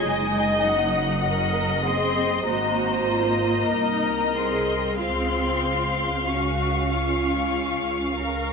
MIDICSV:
0, 0, Header, 1, 6, 480
1, 0, Start_track
1, 0, Key_signature, -5, "major"
1, 0, Tempo, 1209677
1, 21, Time_signature, 4, 2, 24, 8
1, 981, Tempo, 1247401
1, 1461, Tempo, 1273885
1, 3273, End_track
2, 0, Start_track
2, 0, Title_t, "Violin section"
2, 0, Program_c, 0, 48
2, 29, Note_on_c, 0, 80, 67
2, 259, Note_off_c, 0, 80, 0
2, 261, Note_on_c, 0, 78, 56
2, 738, Note_on_c, 0, 84, 61
2, 740, Note_off_c, 0, 78, 0
2, 979, Note_off_c, 0, 84, 0
2, 979, Note_on_c, 0, 82, 50
2, 1687, Note_off_c, 0, 82, 0
2, 1698, Note_on_c, 0, 84, 51
2, 1936, Note_off_c, 0, 84, 0
2, 1941, Note_on_c, 0, 84, 64
2, 2412, Note_off_c, 0, 84, 0
2, 2421, Note_on_c, 0, 85, 47
2, 3273, Note_off_c, 0, 85, 0
2, 3273, End_track
3, 0, Start_track
3, 0, Title_t, "Violin section"
3, 0, Program_c, 1, 48
3, 22, Note_on_c, 1, 75, 55
3, 491, Note_off_c, 1, 75, 0
3, 496, Note_on_c, 1, 75, 54
3, 968, Note_off_c, 1, 75, 0
3, 978, Note_on_c, 1, 75, 53
3, 1929, Note_off_c, 1, 75, 0
3, 1944, Note_on_c, 1, 77, 48
3, 3273, Note_off_c, 1, 77, 0
3, 3273, End_track
4, 0, Start_track
4, 0, Title_t, "Viola section"
4, 0, Program_c, 2, 48
4, 15, Note_on_c, 2, 63, 59
4, 16, Note_on_c, 2, 75, 59
4, 487, Note_off_c, 2, 75, 0
4, 493, Note_on_c, 2, 70, 61
4, 493, Note_on_c, 2, 75, 57
4, 496, Note_off_c, 2, 63, 0
4, 731, Note_off_c, 2, 70, 0
4, 732, Note_on_c, 2, 68, 53
4, 967, Note_off_c, 2, 75, 0
4, 970, Note_on_c, 2, 66, 55
4, 972, Note_on_c, 2, 72, 56
4, 976, Note_off_c, 2, 68, 0
4, 1209, Note_on_c, 2, 65, 55
4, 1212, Note_off_c, 2, 66, 0
4, 1456, Note_off_c, 2, 65, 0
4, 1456, Note_on_c, 2, 63, 58
4, 1457, Note_off_c, 2, 72, 0
4, 1457, Note_on_c, 2, 70, 53
4, 1695, Note_off_c, 2, 63, 0
4, 1698, Note_on_c, 2, 68, 52
4, 1938, Note_off_c, 2, 68, 0
4, 1942, Note_on_c, 2, 65, 44
4, 1943, Note_off_c, 2, 70, 0
4, 1943, Note_on_c, 2, 68, 48
4, 2367, Note_off_c, 2, 68, 0
4, 2376, Note_off_c, 2, 65, 0
4, 2425, Note_on_c, 2, 66, 55
4, 2646, Note_off_c, 2, 66, 0
4, 2656, Note_on_c, 2, 65, 44
4, 3139, Note_off_c, 2, 65, 0
4, 3139, Note_on_c, 2, 70, 57
4, 3273, Note_off_c, 2, 70, 0
4, 3273, End_track
5, 0, Start_track
5, 0, Title_t, "Cello section"
5, 0, Program_c, 3, 48
5, 17, Note_on_c, 3, 56, 72
5, 253, Note_off_c, 3, 56, 0
5, 256, Note_on_c, 3, 54, 61
5, 736, Note_on_c, 3, 60, 72
5, 738, Note_off_c, 3, 54, 0
5, 977, Note_on_c, 3, 58, 65
5, 978, Note_off_c, 3, 60, 0
5, 1697, Note_on_c, 3, 60, 58
5, 1700, Note_off_c, 3, 58, 0
5, 1937, Note_off_c, 3, 60, 0
5, 1942, Note_on_c, 3, 60, 69
5, 2413, Note_off_c, 3, 60, 0
5, 2423, Note_on_c, 3, 61, 55
5, 3273, Note_off_c, 3, 61, 0
5, 3273, End_track
6, 0, Start_track
6, 0, Title_t, "Double bass section"
6, 0, Program_c, 4, 48
6, 20, Note_on_c, 4, 30, 62
6, 980, Note_off_c, 4, 30, 0
6, 980, Note_on_c, 4, 32, 57
6, 1451, Note_off_c, 4, 32, 0
6, 1460, Note_on_c, 4, 36, 50
6, 1935, Note_off_c, 4, 36, 0
6, 1942, Note_on_c, 4, 37, 48
6, 3273, Note_off_c, 4, 37, 0
6, 3273, End_track
0, 0, End_of_file